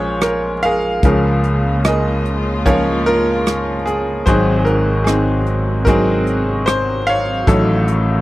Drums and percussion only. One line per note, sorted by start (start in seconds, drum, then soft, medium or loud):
0.21 cross-stick loud
0.21 closed hi-hat medium
0.62 closed hi-hat medium
1.03 kick medium
1.03 closed hi-hat medium
1.44 closed hi-hat medium
1.84 cross-stick loud
1.84 closed hi-hat medium
2.26 closed hi-hat soft
2.66 kick medium
2.66 closed hi-hat medium
3.06 closed hi-hat medium
3.46 cross-stick medium
3.46 closed hi-hat medium
3.87 closed hi-hat medium
4.27 kick medium
4.27 closed hi-hat medium
4.67 closed hi-hat soft
5.06 cross-stick medium
5.06 closed hi-hat medium
5.46 closed hi-hat soft
5.87 kick medium
5.87 closed hi-hat medium
6.27 closed hi-hat soft
6.67 cross-stick loud
6.67 closed hi-hat medium
7.07 closed hi-hat soft
7.47 kick medium
7.47 closed hi-hat medium
7.88 closed hi-hat medium